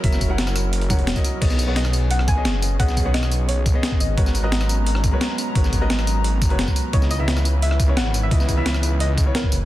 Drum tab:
CC |----------------|x---------------|----------------|----------------|
HH |x-x-x-x-xxxxxxx-|x-x-x-x-x-x-x-x-|x-x-x-x-x-x-x-x-|x-x-x-x-x-x-x-x-|
TB |-xx--xx---x--xx-|-xx--xx---x---x-|-xx--xx---x---x-|-xx--xx---x---x-|
SD |-o--orr-----o---|-o--or---r--o---|-o--or------o---|-o--or---r--o---|
BD |o-o-------o--o--|o---------o-----|o-o-------o--o--|o---------o-----|

CC |----------------|----------------|----------------|
HH |x-x-x-x-x-xxx-x-|x-x-x-x-x-x-x-x-|x-x-x-x-x-x-x-x-|
TB |-xx--xx---x--xx-|-xx--xx---x---x-|-xx--xx---x---x-|
SD |-o--or------o---|-o--or---r--o---|-o--or------o---|
BD |o-o-------o--o--|o---------o-----|o-o-------o--o--|